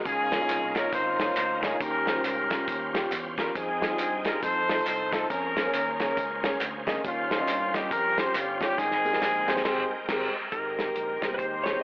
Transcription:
0.04 fingered electric bass C#2, upright piano C#3, tonewheel organ A#3 C#4 D#4 F4, horn section D#4 F4 G#4, kick, closed hi-hat, tambourine
0.32 upright piano A#3 D#4 F4 C#5, snare, closed hi-hat, tambourine
0.41 upright piano A#3 D#4 F4 C#5
0.49 fingered electric bass C2, clap, closed hi-hat, tambourine
0.76 upright piano A#3 D#4 F4 C#5, horn section A#4, kick, snare, clap, closed hi-hat, tambourine
0.93 fingered electric bass G#1, horn section D#4 F4 C5, kick, closed hi-hat, tambourine
1.19 upright piano A#3 D#4 F4 C#5, snare, closed hi-hat, tambourine
1.37 fingered electric bass D2, clap, closed hi-hat, tambourine
1.63 upright piano A#3 D#4 F4 C#5, horn section G#4, kick, snare, closed hi-hat, tambourine
1.80 fingered electric bass D#2, upright piano D#3, tonewheel organ C#4 F4 G4 C5, horn section C#4 G4 A#4, kick, closed hi-hat, tambourine
2.06 upright piano G3 C#4 F4 C5, snare, closed hi-hat, tambourine
2.15 upright piano G3 C#4 F4 C5
2.24 fingered electric bass C#2, horn section C#4 G4 A#4, clap, closed hi-hat, tambourine
2.51 upright piano G3 C#4 F4 A#4, kick, snare, clap, closed hi-hat, tambourine
2.68 fingered electric bass D#2, kick, closed hi-hat, tambourine
2.94 upright piano G3 C#4 F4 G4, snare, closed hi-hat, tambourine
3.12 fingered electric bass E2, clap, closed hi-hat, tambourine
3.38 upright piano G3 C#4 F4 A#4, kick, snare, closed hi-hat, tambourine
3.55 fingered electric bass F2, tonewheel organ F3 D#4 F#4 G#4, horn section C4 D#4 G#4, kick, closed hi-hat, tambourine
3.61 tonewheel organ G5
3.81 upright piano G3 D#4 F4 G#4, snare, closed hi-hat, tambourine
3.90 upright piano G3 D#4 F4 G#4
3.99 fingered electric bass G2, clap, closed hi-hat, tambourine
4.26 upright piano G3 D#4 F4 G#4, horn section A#4, kick, snare, clap, closed hi-hat, tambourine
4.43 fingered electric bass F2, tonewheel organ F3 C4 D#4 A4, horn section D#4 A4 C5, kick, closed hi-hat, tambourine
4.69 upright piano A3 D#4 F4 C5, snare, closed hi-hat, tambourine
4.87 fingered electric bass C2, clap, closed hi-hat, tambourine
5.13 upright piano A3 D#4 F4 C5, horn section A4, kick, snare, closed hi-hat, tambourine
5.30 fingered electric bass F2, tonewheel organ A#3 C#4 G#4 C5, horn section C#4 A#4, kick, closed hi-hat, tambourine
5.56 upright piano A#3 C#4 G#4 C5, snare, closed hi-hat, tambourine
5.65 upright piano A#3 C#4 G#4 C#5
5.74 fingered electric bass D#2, horn section C#4 A#4, clap, closed hi-hat, tambourine
6.00 upright piano A#3 C#4 G#4 C#5, kick, snare, clap, closed hi-hat, tambourine
6.17 fingered electric bass C#2, kick, closed hi-hat, tambourine
6.43 upright piano A#3 C#4 G#4 C#5, snare, closed hi-hat, tambourine
6.61 fingered electric bass D2, clap, closed hi-hat, tambourine
6.87 upright piano A#3 C#4 G#4 D#5, kick, snare, closed hi-hat, tambourine
7.04 fingered electric bass D#2, upright piano D#3, tonewheel organ G3 C#4 F4 B4, horn section A#3 C#4 F4, kick, closed hi-hat, tambourine
7.10 tonewheel organ C5
7.30 upright piano G3 C#4 F4 C5, snare, closed hi-hat, tambourine
7.39 upright piano G3 C#4 F4 D#5
7.48 fingered electric bass G2, clap, closed hi-hat, tambourine
7.74 upright piano G3 C#4 F4 D#5, horn section G4, kick, snare, clap, closed hi-hat, tambourine
7.91 fingered electric bass F2, horn section C#4 G4 A#4, kick, closed hi-hat, tambourine
8.18 upright piano G3 C#4 F4 C5, horn section C5, snare, closed hi-hat, tambourine
8.35 fingered electric bass G1, horn section F4, clap, closed hi-hat, tambourine
8.61 upright piano G3 C#4 F4 C#5, horn section G4, kick, snare, closed hi-hat, tambourine
8.77 fingered electric bass G#1, upright piano G#2, tonewheel organ G#3 C4 A#4 G5, horn section C4 D#4 G#4, kick, snare, tambourine
8.91 snare
9.05 upright piano G#3 C4 G4 A#4, tambourine
9.13 upright piano G#3 C4 G4 A#4, snare
9.22 fingered electric bass A#1, snare, clap, tambourine
9.48 upright piano G#3 C4 G4 C5, snare, clap, tambourine
9.57 snare
9.65 fingered electric bass G#1, upright piano G#3 C4 G4 C5, kick, snare, crash
10.09 fingered electric bass G#1, upright piano G#3 C4 G4 A#4, kick, snare, crash
10.52 fingered electric bass G#1, upright piano G#2, tonewheel organ G#3 C4 G4 A#4, horn section D#4 G4 A#4, electric slide guitar A#4, kick, closed hi-hat
10.79 upright piano G#3 C4 G4 A#4, snare, closed hi-hat
10.96 fingered electric bass A#1, closed hi-hat
11.22 fingered electric bass C2, upright piano G#3 C4 G4 C5, kick, snare, closed hi-hat
11.30 upright piano G#3 C4 G4 C5, electric slide guitar B4
11.38 fingered electric bass D#2, horn section D#4 G4 C5, electric slide guitar C5, kick, closed hi-hat
11.64 upright piano G#3 C4 G4 C5, electric slide guitar C#5, snare, closed hi-hat
11.74 upright piano G#3 C4 G4 C5

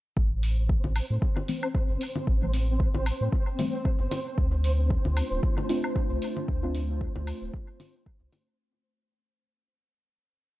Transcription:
0.17 sub bass A1, synth texture C4 C5, kick
0.43 open hi-hat
0.69 kick
0.84 sub bass A1, low conga
0.96 open hi-hat, low woodblock
1.10 sub bass A2
1.22 kick
1.37 low conga
1.48 synth stab E3 G3 A3 C4, open hi-hat
1.63 low woodblock
1.75 kick
1.89 sub bass G1
2.01 open hi-hat
2.16 low conga
2.27 sub bass A1, kick
2.42 synth stab E3 G3 A3 C4
2.54 open hi-hat
2.80 kick
2.95 sub bass A1, low conga
3.06 open hi-hat, low woodblock
3.21 sub bass A2
3.33 kick
3.59 synth stab E3 G3 A3 C4, open hi-hat, low conga
3.85 kick
4.00 sub bass G1
4.11 open hi-hat, low conga
4.38 sub bass D2, ambient pad A3 D4 F4 C5, kick
4.64 open hi-hat
4.90 kick
5.05 sub bass D2, low conga
5.17 open hi-hat, low woodblock
5.31 sub bass D1
5.43 kick
5.58 low conga
5.69 synth stab A3 C4 D4 F4, open hi-hat
5.84 low woodblock
5.96 kick
6.10 sub bass C2
6.22 open hi-hat
6.37 low conga
6.48 sub bass D2, kick
6.63 synth stab A3 C4 D4 F4
6.75 open hi-hat
7.01 kick
7.16 sub bass D2, low conga
7.27 open hi-hat, low woodblock
7.42 sub bass D1
7.54 kick
7.80 open hi-hat, low conga
8.06 kick
8.21 sub bass C2
8.33 open hi-hat, low conga

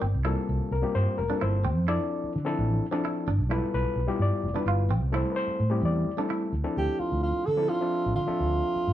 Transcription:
0.02 fretless electric bass G1, clean electric guitar C4
0.14 fretless electric bass C2
0.25 reed electric piano G3 A#3 C4 F4 A4, clean electric guitar E4
0.49 fretless electric bass C2
0.60 muted fretless electric bass stroke
0.71 fretless electric bass C2, reed electric piano A#4
0.82 reed electric piano G3 A#3 C4 F4 G4, muted fretless electric bass stroke
0.95 fretless electric bass G2, reed electric piano C5
1.07 muted fretless electric bass stroke
1.18 fretless electric bass F1, reed electric piano A#4
1.30 reed electric piano G3 A#3 C4 F4 A4, clean electric guitar D4
1.41 fretless electric bass G1, clean electric guitar E4, reed electric piano C5
1.65 fretless electric bass D2, clean electric guitar C4
1.76 fretless electric bass F2
1.88 reed electric piano F3 C4 D4 E4 A4 D5, clean electric guitar E4
2.24 muted fretless electric bass stroke
2.36 fretless electric bass D3
2.45 reed electric piano F3 C4 D4 E4 A4
2.59 fretless electric bass A1
2.91 reed electric piano F3 C4 D4 E4 A4, clean electric guitar D4
3.05 clean electric guitar E4
3.27 fretless electric bass G1, clean electric guitar D4
3.39 fretless electric bass B1
3.49 reed electric piano G3 B3 E4 F4 A4 B4, clean electric guitar E4
3.74 fretless electric bass B1, reed electric piano B4
3.86 muted fretless electric bass stroke
3.96 fretless electric bass B1
4.07 reed electric piano G3 B3 E4 F4 G4
4.19 fretless electric bass G2, reed electric piano D5
4.31 muted fretless electric bass stroke
4.43 fretless electric bass F1
4.54 reed electric piano G3 B3 E4 F4 B4, clean electric guitar D4
4.66 fretless electric bass G1, clean electric guitar F4
4.89 fretless electric bass A1, clean electric guitar C4
5.01 fretless electric bass C2
5.12 reed electric piano G3 A3 C4 E4 A4 C5, clean electric guitar E4
5.32 reed electric piano B4
5.36 reed electric piano C5
5.47 muted fretless electric bass stroke
5.60 fretless electric bass A2
5.70 reed electric piano G3 A3 C4 E4 G4
5.82 fretless electric bass E2, reed electric piano D5
6.17 reed electric piano G3 A3 C4 E4 A4, clean electric guitar D4
6.30 clean electric guitar E4
6.53 fretless electric bass D2
6.64 reed electric piano F3 C4 D4 E4 A4
6.77 fretless electric bass D2, alto saxophone G4
7.00 alto saxophone F4, muted fretless electric bass stroke
7.12 fretless electric bass D2
7.23 alto saxophone F4
7.45 fretless electric bass D3, alto saxophone A4
7.57 reed electric piano F3 C4 D4 E4 A4
7.69 alto saxophone F4
7.81 reed electric piano F3 C4 D4 A4 E5
8.06 fretless electric bass A1
8.16 fretless electric bass D3, alto saxophone F4
8.27 reed electric piano F3 C4 D4 A4 E5, muted fretless electric bass stroke
8.40 fretless electric bass D2
8.76 muted fretless electric bass stroke
8.87 fretless electric bass G2

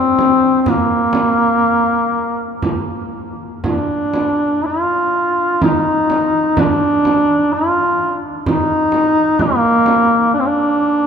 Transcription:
Already playing: duduk C4
0.19 frame drum
0.61 duduk C4
0.66 duduk A#3, frame drum
1.13 frame drum
2.62 frame drum
3.64 duduk D4, frame drum
4.14 frame drum
4.66 duduk F4
5.62 duduk D#4, frame drum
6.10 frame drum
6.57 duduk D4, frame drum
7.05 frame drum
7.53 duduk F4
8.46 duduk D#4, frame drum
8.92 frame drum
9.39 duduk A#3, frame drum
9.86 frame drum
10.34 duduk D4
10.40 duduk C4
10.47 duduk D4

